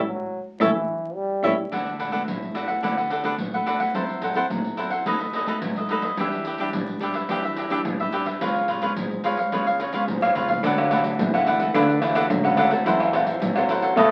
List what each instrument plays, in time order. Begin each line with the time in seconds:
0.05 trombone F#3
0.60 cello A2, trombone E3, nylon-string guitar A3 C#4 E4, cavaquinho A4 C#5 E5, surdo
1.15 trombone G3
1.43 cello A2, nylon-string guitar A3 C#4 E4, cavaquinho A4 C#5 E5, surdo
1.72 nylon-string guitar D3 A3 B3 F#4, cavaquinho D4 A4 B4 F#5, pandeiro, surdo
1.86 pandeiro
1.99 cavaquinho D4 A4 B4 F#5, pandeiro, surdo
2.12 nylon-string guitar A3 B3 F#4, cavaquinho D4 A4 B4 F#5, pandeiro
2.28 nylon-string guitar A2, pandeiro, surdo
2.42 pandeiro
2.54 nylon-string guitar A3 B3 F#4, cavaquinho D4 A4 B4 F#5, pandeiro
2.68 cavaquinho A4 B4 F#5, pandeiro
2.83 nylon-string guitar D3 A3 B3 F#4, cavaquinho D4 A4 B4 F#5, pandeiro, surdo
2.97 cavaquinho A4 B4 F#5, pandeiro
3.10 cavaquinho D4 A4 B4 F#5, pandeiro
3.24 nylon-string guitar A3 B3 F#4, cavaquinho D4 A4 B4 F#5, pandeiro
3.38 nylon-string guitar A2, pandeiro, surdo
3.53 cavaquinho A4 B4 F#5, pandeiro
3.66 nylon-string guitar A3 B3 F#4, cavaquinho D4 A4 B4 F#5, pandeiro
3.80 cavaquinho A4 B4 F#5, pandeiro
3.94 nylon-string guitar F#3 C4 E4 A4, cavaquinho E4 A4 C5 F#5, pandeiro, surdo
4.09 pandeiro
4.22 cavaquinho E4 A4 C5 F#5, pandeiro, surdo
4.35 nylon-string guitar C4 E4 A4, cavaquinho E4 A4 C5 F#5, pandeiro
4.50 nylon-string guitar F#3, pandeiro, surdo
4.64 pandeiro
4.77 nylon-string guitar C4 E4 A4, cavaquinho E4 A4 C5 F#5, pandeiro
4.90 cavaquinho A4 C5 F#5, pandeiro
5.06 nylon-string guitar B2 A3 D#4 F#4, cavaquinho D#4 A4 B4 D#5, pandeiro, surdo
5.20 cavaquinho A4 B4 D#5, pandeiro
5.33 cavaquinho D#4 A4 B4 D#5, pandeiro
5.47 nylon-string guitar A3 D#4 F#4, cavaquinho D#4 A4 B4 D#5, pandeiro
5.62 nylon-string guitar F#3, pandeiro, surdo
5.76 cavaquinho A4 B4 D#5, pandeiro
5.89 nylon-string guitar A3 D#4 F#4, cavaquinho D#4 A4 B4 D#5, pandeiro
6.02 cavaquinho A4 B4 D#5, pandeiro
6.17 nylon-string guitar E3 G3 D4 F#4, cavaquinho D4 G4 B4 E5, pandeiro, surdo
6.32 pandeiro
6.45 cavaquinho D4 G4 B4 E5, pandeiro
6.58 nylon-string guitar G3 D4 F#4, cavaquinho D4 G4 B4 E5, pandeiro
6.73 nylon-string guitar B2, pandeiro, surdo
6.87 pandeiro
7.00 nylon-string guitar G3 D4 F#4, cavaquinho D4 G4 B4 E5, pandeiro
7.14 cavaquinho G4 B4 E5, pandeiro
7.29 nylon-string guitar E3 G3 D4 F#4, cavaquinho D4 G4 B4 E5, pandeiro, surdo
7.44 cavaquinho G4 B4 E5, pandeiro
7.56 cavaquinho D4 G4 B4 E5, pandeiro
7.70 nylon-string guitar G3 D4 F#4, cavaquinho D4 G4 B4 E5, pandeiro
7.85 nylon-string guitar B2, pandeiro, surdo
8.00 cavaquinho G4 B4 E5, pandeiro
8.12 nylon-string guitar G3 D4 F#4, cavaquinho D4 G4 B4 E5, pandeiro
8.26 cavaquinho G4 B4 E5, pandeiro
8.41 nylon-string guitar C#3 G#3 B3 F4, cavaquinho F4 B4 C#5 F5, pandeiro, surdo
8.55 pandeiro
8.68 cavaquinho F4 B4 C#5 F5, pandeiro, surdo
8.82 nylon-string guitar G#3 B3 F4, cavaquinho F4 B4 C#5 F5, pandeiro
8.96 nylon-string guitar G#2, pandeiro, surdo
9.11 pandeiro
9.24 nylon-string guitar G#3 B3 F4, cavaquinho F4 B4 C#5 F5, pandeiro
9.37 cavaquinho B4 C#5 F5, pandeiro
9.52 nylon-string guitar C#3 G#3 B3 F4, cavaquinho F4 B4 C#5 F5, pandeiro, surdo
9.67 cavaquinho B4 C#5 F5, pandeiro
9.80 cavaquinho F4 B4 C#5 F5, pandeiro
9.93 nylon-string guitar G#3 B3 F4, cavaquinho F4 B4 C#5 F5, pandeiro
10.08 nylon-string guitar G#2, pandeiro, surdo
10.22 cavaquinho B4 C#5 F5, pandeiro, tamborim
10.35 nylon-string guitar G#3 B3 F4, cavaquinho F4 B4 C#5 F5, surdo, pandeiro
10.48 cavaquinho B4 C#5 F5, pandeiro, surdo
10.64 cello D3, nylon-string guitar D3 A3 B3 F#4, trombone F#3, cavaquinho D4 A4 B4 F#5, pandeiro, shaker, surdo
10.78 pandeiro, tamborim, shaker
10.91 nylon-string guitar A3 B3 F#4, cavaquinho D4 A4 B4 F#5, pandeiro, tamborim, shaker, surdo
11.04 pandeiro, shaker
11.19 nylon-string guitar A2, cello D3, trombone E3, pandeiro, shaker, surdo
11.33 nylon-string guitar A3 B3 F#4, cavaquinho A4 B4 F#5, pandeiro, tamborim, shaker
11.46 cavaquinho D4 A4 B4 F#5, pandeiro
11.60 nylon-string guitar A3 B3 F#4, cavaquinho A4 B4 F#5, pandeiro, shaker
11.75 cello D3, trombone D3, nylon-string guitar D3 A3 B3 F#4, cavaquinho D4 A4 B4 F#5, pandeiro, tamborim, shaker, surdo
11.89 pandeiro, shaker
12.01 trombone E3, cavaquinho D4 A4 B4 F#5, pandeiro, tamborim, shaker
12.15 nylon-string guitar A3 B3 F#4, cavaquinho D4 A4 B4 F#5, pandeiro, tamborim, shaker
12.29 nylon-string guitar A2, cello D3, trombone F#3, pandeiro, shaker, surdo
12.44 cello C#3, nylon-string guitar A3 B3 F#4, cavaquinho A4 B4 F#5, pandeiro, tamborim, shaker
12.57 cavaquinho D4 A4 B4 F#5, pandeiro, tamborim, shaker
12.71 nylon-string guitar C4 E4 A4, cavaquinho B4 F#5, pandeiro, shaker
12.85 cello F#2, trombone E3, nylon-string guitar F#3, cavaquinho E4 A4 C5 F#5, pandeiro, shaker, surdo
13.00 pandeiro, tamborim, shaker
13.13 nylon-string guitar C4 E4 A4, cavaquinho E4 A4 C5 F#5, pandeiro, tamborim, surdo
13.27 pandeiro, shaker
13.34 trombone F3
13.41 cello A2, trombone F#3, nylon-string guitar F#3, pandeiro, shaker, surdo
13.56 nylon-string guitar C4 E4 A4, cavaquinho A4 C5 F#5, pandeiro, tamborim, shaker
13.69 cavaquinho E4 A4 C5 F#5, pandeiro, shaker
13.82 cavaquinho A4 C5 F#5, pandeiro, shaker
13.96 cello B2, nylon-string guitar B2 A3 D#4 F#4, trombone A3, cavaquinho D#4 A4 B4 D#5, pandeiro, tamborim, shaker, surdo